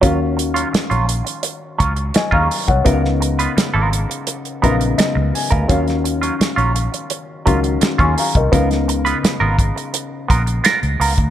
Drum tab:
HH |x-xxxxxxx-xxx-ox|x-xxx-xxxxxxx-ox|xxxxxxxxx-xxxxox|xxxxx-xxx-xxxxox|
SD |----o-------o---|-o--o-------o---|-o--o-------o---|-o--o-------o---|
BD |o---------o--o-o|o---------o----o|o---------o--o-o|o-----o---o----o|